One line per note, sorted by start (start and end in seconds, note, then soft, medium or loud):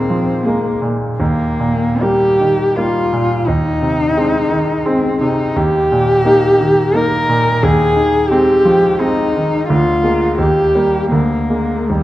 0.00 1.16 D#2 soft
0.00 0.82 A#2 soft
0.00 0.46 G#3 soft
0.00 0.47 A#3 soft
0.00 0.47 C4 soft
0.10 0.68 F3 soft
0.45 0.79 G#3 soft
0.45 0.82 A#3 soft
0.45 0.79 A#3 soft
0.82 1.19 A#2 soft
1.19 3.43 D#2 soft
1.19 2.02 A#3 soft
1.60 2.25 A#2 soft
2.01 2.36 G3 soft
2.01 2.36 A#3 soft
2.01 2.78 G4 medium
2.40 2.97 D#3 soft
2.76 3.09 G3 soft
2.76 3.09 A#3 soft
2.76 3.48 F4 soft
3.13 3.47 A#2 soft
3.46 5.53 D#2 soft
3.46 4.88 D#4 medium
3.82 4.37 C3 soft
4.17 4.48 G#3 soft
4.17 4.48 C4 soft
4.50 5.06 D#3 soft
4.86 5.17 G#3 soft
4.86 5.18 C4 soft
4.86 5.21 C4 soft
5.21 5.57 C3 soft
5.21 5.58 D#4 soft
5.56 7.59 D#2 soft
5.56 6.98 G4 medium
5.92 6.47 A#2 soft
6.25 6.56 A#3 soft
6.25 6.57 D#4 soft
6.61 7.15 D#3 soft
6.95 7.25 A#3 soft
6.95 7.26 D#4 soft
6.95 7.64 A#4 medium
7.29 7.63 A#2 soft
7.63 9.66 D#2 soft
7.63 8.31 G#4 medium
7.96 8.51 D#3 soft
8.30 8.62 G#3 soft
8.30 8.62 C4 soft
8.30 9.01 G4 medium
8.65 9.21 F3 soft
9.00 9.31 G#3 soft
9.00 9.31 C4 soft
9.00 9.68 D#4 medium
9.36 9.70 D#3 soft
9.69 10.38 D2 soft
9.69 10.38 F4 medium
10.03 10.36 G#3 soft
10.03 10.36 A#3 soft
10.38 11.10 D#2 soft
10.38 11.11 G4 medium
10.75 11.09 G3 soft
10.75 11.09 A#3 soft
11.11 11.86 D2 soft
11.11 11.91 A#3 soft
11.50 11.85 G#3 soft
11.50 11.85 A#3 soft
11.90 12.03 D#2 soft
11.90 12.03 G3 soft